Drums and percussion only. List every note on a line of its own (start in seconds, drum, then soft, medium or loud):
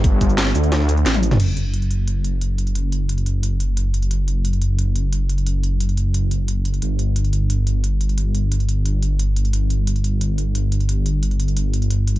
0.04 kick loud
0.04 closed hi-hat medium
0.04 closed hi-hat loud
0.21 kick medium
0.21 closed hi-hat medium
0.21 shaker medium
0.30 shaker soft
0.38 snare loud
0.38 closed hi-hat loud
0.38 closed hi-hat medium
0.46 cross-stick soft
0.46 snare medium
0.46 closed hi-hat soft
0.55 closed hi-hat medium
0.55 shaker medium
0.63 closed hi-hat soft
0.63 shaker soft
0.72 cross-stick soft
0.72 snare loud
0.72 closed hi-hat medium
0.80 snare soft
0.89 closed hi-hat medium
0.89 shaker medium
0.97 closed hi-hat soft
1.06 snare soft
1.06 snare medium
1.06 closed hi-hat medium
1.14 closed hi-hat medium
1.14 high tom medium
1.23 closed hi-hat medium
1.23 shaker medium
1.31 snare soft
1.31 closed hi-hat medium
1.31 closed hi-hat soft
1.31 mid tom medium
1.40 closed hi-hat medium
1.40 crash medium
1.57 closed hi-hat medium
1.74 closed hi-hat medium
1.82 closed hi-hat soft
1.91 closed hi-hat medium
2.08 closed hi-hat medium
2.24 closed hi-hat medium
2.41 closed hi-hat medium
2.58 closed hi-hat medium
2.67 closed hi-hat soft
2.75 closed hi-hat medium
2.92 closed hi-hat medium
3.09 closed hi-hat medium
3.18 closed hi-hat soft
3.26 closed hi-hat medium
3.43 closed hi-hat medium
3.60 closed hi-hat medium
3.77 closed hi-hat medium
3.94 closed hi-hat medium
4.02 closed hi-hat soft
4.11 closed hi-hat medium
4.28 closed hi-hat medium
4.45 closed hi-hat medium
4.53 closed hi-hat soft
4.62 closed hi-hat medium
4.79 closed hi-hat medium
4.96 closed hi-hat medium
5.13 closed hi-hat medium
5.29 closed hi-hat medium
5.38 closed hi-hat soft
5.47 closed hi-hat medium
5.63 closed hi-hat medium
5.80 closed hi-hat medium
5.89 closed hi-hat soft
5.97 closed hi-hat medium
6.14 closed hi-hat medium
6.31 closed hi-hat medium
6.48 closed hi-hat medium
6.65 closed hi-hat medium
6.74 closed hi-hat soft
6.82 closed hi-hat medium
6.99 closed hi-hat medium
7.16 closed hi-hat medium
7.24 closed hi-hat soft
7.33 closed hi-hat medium
7.50 closed hi-hat medium
7.67 closed hi-hat medium
7.84 closed hi-hat medium
8.01 closed hi-hat medium
8.09 closed hi-hat soft
8.18 closed hi-hat medium
8.35 closed hi-hat medium
8.52 closed hi-hat medium
8.60 closed hi-hat soft
8.69 closed hi-hat medium
8.86 closed hi-hat medium
9.03 closed hi-hat medium
9.19 closed hi-hat medium
9.36 closed hi-hat medium
9.45 closed hi-hat soft
9.53 closed hi-hat medium
9.70 closed hi-hat medium
9.87 closed hi-hat medium
9.96 closed hi-hat soft
10.04 closed hi-hat medium
10.21 closed hi-hat medium
10.38 closed hi-hat medium
10.55 closed hi-hat medium
10.72 closed hi-hat medium
10.80 closed hi-hat soft
10.89 closed hi-hat loud
11.06 closed hi-hat medium
11.23 closed hi-hat medium
11.31 closed hi-hat soft
11.40 closed hi-hat medium
11.48 closed hi-hat soft
11.57 closed hi-hat medium
11.74 closed hi-hat medium
11.82 closed hi-hat soft
11.90 closed hi-hat medium
12.07 closed hi-hat medium
12.16 closed hi-hat soft